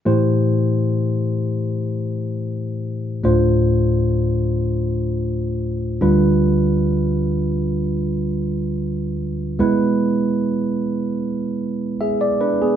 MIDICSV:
0, 0, Header, 1, 2, 480
1, 0, Start_track
1, 0, Key_signature, 0, "minor"
1, 0, Tempo, 500000
1, 12252, End_track
2, 0, Start_track
2, 0, Title_t, "Tine electric piano"
2, 0, Program_c, 0, 4
2, 52, Note_on_c, 0, 57, 44
2, 54, Note_on_c, 0, 64, 40
2, 58, Note_on_c, 0, 45, 45
2, 59, Note_on_c, 0, 52, 42
2, 62, Note_on_c, 0, 67, 38
2, 62, Note_on_c, 0, 72, 51
2, 216, Control_c, 0, 64, 127
2, 3066, Note_off_c, 0, 57, 0
2, 3067, Note_off_c, 0, 64, 0
2, 3069, Note_off_c, 0, 45, 0
2, 3070, Note_off_c, 0, 52, 0
2, 3071, Note_off_c, 0, 67, 0
2, 3071, Note_off_c, 0, 72, 0
2, 3106, Note_on_c, 0, 57, 48
2, 3108, Note_on_c, 0, 62, 42
2, 3111, Note_on_c, 0, 38, 45
2, 3111, Note_on_c, 0, 45, 46
2, 3114, Note_on_c, 0, 65, 42
2, 3119, Note_on_c, 0, 72, 55
2, 3120, Control_c, 0, 64, 0
2, 3303, Control_c, 0, 64, 127
2, 5736, Note_off_c, 0, 57, 0
2, 5736, Note_off_c, 0, 62, 0
2, 5738, Note_off_c, 0, 38, 0
2, 5738, Note_off_c, 0, 45, 0
2, 5739, Note_off_c, 0, 65, 0
2, 5742, Note_off_c, 0, 72, 0
2, 5771, Note_on_c, 0, 55, 48
2, 5771, Note_on_c, 0, 62, 49
2, 5773, Note_on_c, 0, 38, 53
2, 5777, Note_on_c, 0, 50, 51
2, 5779, Note_on_c, 0, 65, 45
2, 5781, Note_on_c, 0, 71, 53
2, 5786, Control_c, 0, 64, 0
2, 5961, Control_c, 0, 64, 127
2, 8788, Note_off_c, 0, 55, 0
2, 8788, Note_off_c, 0, 62, 0
2, 8789, Note_off_c, 0, 38, 0
2, 8791, Note_off_c, 0, 50, 0
2, 8792, Note_off_c, 0, 65, 0
2, 8793, Note_off_c, 0, 71, 0
2, 9208, Note_on_c, 0, 56, 56
2, 9212, Note_on_c, 0, 59, 48
2, 9213, Note_on_c, 0, 47, 54
2, 9214, Note_on_c, 0, 40, 51
2, 9215, Note_on_c, 0, 64, 46
2, 9219, Note_on_c, 0, 71, 61
2, 9223, Control_c, 0, 64, 0
2, 9371, Control_c, 0, 64, 127
2, 11485, Note_off_c, 0, 59, 0
2, 11486, Note_off_c, 0, 64, 0
2, 11489, Note_off_c, 0, 71, 0
2, 11526, Note_on_c, 0, 76, 45
2, 11531, Note_on_c, 0, 68, 39
2, 11709, Note_off_c, 0, 76, 0
2, 11712, Note_off_c, 0, 68, 0
2, 11722, Note_on_c, 0, 74, 51
2, 11871, Note_off_c, 0, 56, 0
2, 11904, Note_off_c, 0, 74, 0
2, 11911, Note_on_c, 0, 71, 54
2, 11916, Note_on_c, 0, 62, 46
2, 12095, Note_off_c, 0, 71, 0
2, 12097, Note_off_c, 0, 62, 0
2, 12112, Note_on_c, 0, 68, 51
2, 12116, Note_on_c, 0, 59, 39
2, 12252, Note_off_c, 0, 40, 0
2, 12252, Note_off_c, 0, 47, 0
2, 12252, Note_off_c, 0, 59, 0
2, 12252, Note_off_c, 0, 68, 0
2, 12252, End_track
0, 0, End_of_file